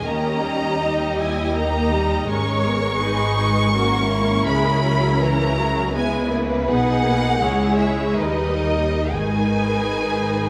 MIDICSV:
0, 0, Header, 1, 6, 480
1, 0, Start_track
1, 0, Key_signature, 5, "minor"
1, 0, Tempo, 750939
1, 47, Time_signature, 3, 2, 24, 8
1, 1007, Tempo, 723764
1, 2927, Tempo, 737101
1, 4847, Tempo, 768246
1, 5327, Tempo, 961538
1, 5807, Tempo, 888889
1, 6533, End_track
2, 0, Start_track
2, 0, Title_t, "Violin section"
2, 0, Program_c, 0, 48
2, 41, Note_on_c, 0, 82, 65
2, 760, Note_on_c, 0, 80, 55
2, 765, Note_off_c, 0, 82, 0
2, 998, Note_off_c, 0, 80, 0
2, 1004, Note_on_c, 0, 82, 67
2, 1473, Note_off_c, 0, 82, 0
2, 1484, Note_on_c, 0, 85, 88
2, 2899, Note_off_c, 0, 85, 0
2, 2928, Note_on_c, 0, 83, 75
2, 3408, Note_on_c, 0, 82, 77
2, 3410, Note_off_c, 0, 83, 0
2, 3890, Note_off_c, 0, 82, 0
2, 3892, Note_on_c, 0, 80, 69
2, 4128, Note_off_c, 0, 80, 0
2, 4372, Note_on_c, 0, 78, 88
2, 5054, Note_off_c, 0, 78, 0
2, 5076, Note_on_c, 0, 76, 58
2, 5325, Note_off_c, 0, 76, 0
2, 5329, Note_on_c, 0, 75, 64
2, 5805, Note_on_c, 0, 80, 71
2, 5808, Note_off_c, 0, 75, 0
2, 6533, Note_off_c, 0, 80, 0
2, 6533, End_track
3, 0, Start_track
3, 0, Title_t, "Violin section"
3, 0, Program_c, 1, 48
3, 0, Note_on_c, 1, 75, 45
3, 46, Note_on_c, 1, 67, 42
3, 515, Note_off_c, 1, 67, 0
3, 522, Note_on_c, 1, 67, 42
3, 1463, Note_off_c, 1, 67, 0
3, 1482, Note_off_c, 1, 75, 0
3, 1483, Note_on_c, 1, 73, 51
3, 1485, Note_on_c, 1, 70, 49
3, 1956, Note_off_c, 1, 70, 0
3, 1965, Note_off_c, 1, 73, 0
3, 1965, Note_on_c, 1, 68, 46
3, 1968, Note_on_c, 1, 71, 49
3, 2203, Note_off_c, 1, 71, 0
3, 2212, Note_on_c, 1, 71, 51
3, 2444, Note_off_c, 1, 71, 0
3, 2445, Note_off_c, 1, 68, 0
3, 2450, Note_on_c, 1, 66, 50
3, 2450, Note_on_c, 1, 70, 51
3, 2685, Note_off_c, 1, 66, 0
3, 2688, Note_on_c, 1, 64, 51
3, 3867, Note_off_c, 1, 70, 0
3, 3869, Note_off_c, 1, 64, 0
3, 3885, Note_on_c, 1, 71, 51
3, 3886, Note_on_c, 1, 64, 48
3, 4360, Note_off_c, 1, 64, 0
3, 4372, Note_on_c, 1, 68, 57
3, 4843, Note_off_c, 1, 68, 0
3, 4844, Note_off_c, 1, 71, 0
3, 4850, Note_on_c, 1, 68, 50
3, 4851, Note_on_c, 1, 73, 46
3, 5318, Note_off_c, 1, 68, 0
3, 5319, Note_off_c, 1, 73, 0
3, 5329, Note_on_c, 1, 71, 45
3, 5330, Note_on_c, 1, 70, 44
3, 5550, Note_off_c, 1, 70, 0
3, 5556, Note_on_c, 1, 70, 44
3, 5557, Note_off_c, 1, 71, 0
3, 5805, Note_on_c, 1, 68, 46
3, 5806, Note_off_c, 1, 70, 0
3, 5806, Note_on_c, 1, 71, 45
3, 6533, Note_off_c, 1, 68, 0
3, 6533, Note_off_c, 1, 71, 0
3, 6533, End_track
4, 0, Start_track
4, 0, Title_t, "Viola section"
4, 0, Program_c, 2, 48
4, 29, Note_on_c, 2, 58, 48
4, 31, Note_on_c, 2, 61, 41
4, 271, Note_off_c, 2, 58, 0
4, 277, Note_on_c, 2, 55, 49
4, 507, Note_off_c, 2, 61, 0
4, 511, Note_off_c, 2, 55, 0
4, 519, Note_on_c, 2, 55, 45
4, 521, Note_on_c, 2, 63, 44
4, 766, Note_off_c, 2, 63, 0
4, 767, Note_on_c, 2, 64, 47
4, 994, Note_off_c, 2, 55, 0
4, 1003, Note_on_c, 2, 58, 51
4, 1005, Note_on_c, 2, 63, 46
4, 1006, Note_off_c, 2, 64, 0
4, 1245, Note_off_c, 2, 58, 0
4, 1246, Note_on_c, 2, 55, 49
4, 1483, Note_off_c, 2, 63, 0
4, 1483, Note_on_c, 2, 56, 46
4, 1484, Note_off_c, 2, 55, 0
4, 1485, Note_on_c, 2, 61, 46
4, 1720, Note_off_c, 2, 61, 0
4, 1728, Note_on_c, 2, 59, 52
4, 1967, Note_off_c, 2, 59, 0
4, 1967, Note_on_c, 2, 63, 49
4, 2425, Note_off_c, 2, 56, 0
4, 2446, Note_off_c, 2, 63, 0
4, 2449, Note_on_c, 2, 61, 55
4, 2450, Note_on_c, 2, 58, 53
4, 2928, Note_off_c, 2, 58, 0
4, 2932, Note_on_c, 2, 56, 57
4, 3167, Note_on_c, 2, 54, 57
4, 3171, Note_off_c, 2, 56, 0
4, 3404, Note_off_c, 2, 54, 0
4, 3412, Note_on_c, 2, 52, 55
4, 3650, Note_on_c, 2, 54, 55
4, 3652, Note_off_c, 2, 52, 0
4, 3867, Note_off_c, 2, 61, 0
4, 3886, Note_on_c, 2, 59, 48
4, 3890, Note_on_c, 2, 56, 54
4, 3891, Note_off_c, 2, 54, 0
4, 4126, Note_off_c, 2, 56, 0
4, 4127, Note_on_c, 2, 58, 59
4, 4358, Note_off_c, 2, 59, 0
4, 4366, Note_on_c, 2, 59, 51
4, 4369, Note_off_c, 2, 58, 0
4, 4369, Note_on_c, 2, 63, 49
4, 4606, Note_off_c, 2, 59, 0
4, 4610, Note_on_c, 2, 58, 54
4, 4836, Note_off_c, 2, 63, 0
4, 4847, Note_off_c, 2, 58, 0
4, 4847, Note_on_c, 2, 56, 49
4, 4850, Note_on_c, 2, 64, 46
4, 5326, Note_off_c, 2, 56, 0
4, 5328, Note_off_c, 2, 64, 0
4, 5331, Note_on_c, 2, 63, 45
4, 5332, Note_on_c, 2, 55, 44
4, 5802, Note_off_c, 2, 63, 0
4, 5808, Note_on_c, 2, 63, 44
4, 5810, Note_off_c, 2, 55, 0
4, 5810, Note_on_c, 2, 51, 45
4, 6533, Note_off_c, 2, 51, 0
4, 6533, Note_off_c, 2, 63, 0
4, 6533, End_track
5, 0, Start_track
5, 0, Title_t, "Cello section"
5, 0, Program_c, 3, 48
5, 44, Note_on_c, 3, 39, 48
5, 1456, Note_off_c, 3, 39, 0
5, 1486, Note_on_c, 3, 44, 51
5, 2926, Note_off_c, 3, 44, 0
5, 2930, Note_on_c, 3, 49, 54
5, 4348, Note_off_c, 3, 49, 0
5, 4370, Note_on_c, 3, 47, 55
5, 4846, Note_off_c, 3, 47, 0
5, 4849, Note_on_c, 3, 37, 52
5, 5318, Note_off_c, 3, 37, 0
5, 5331, Note_on_c, 3, 39, 52
5, 5799, Note_off_c, 3, 39, 0
5, 5810, Note_on_c, 3, 44, 44
5, 6533, Note_off_c, 3, 44, 0
5, 6533, End_track
6, 0, Start_track
6, 0, Title_t, "Double bass section"
6, 0, Program_c, 4, 48
6, 44, Note_on_c, 4, 39, 50
6, 1456, Note_off_c, 4, 39, 0
6, 1484, Note_on_c, 4, 32, 54
6, 2925, Note_on_c, 4, 37, 63
6, 2926, Note_off_c, 4, 32, 0
6, 4345, Note_off_c, 4, 37, 0
6, 4372, Note_on_c, 4, 35, 54
6, 4847, Note_off_c, 4, 35, 0
6, 4848, Note_on_c, 4, 37, 57
6, 5317, Note_off_c, 4, 37, 0
6, 5325, Note_on_c, 4, 39, 44
6, 5796, Note_off_c, 4, 39, 0
6, 5806, Note_on_c, 4, 32, 51
6, 6533, Note_off_c, 4, 32, 0
6, 6533, End_track
0, 0, End_of_file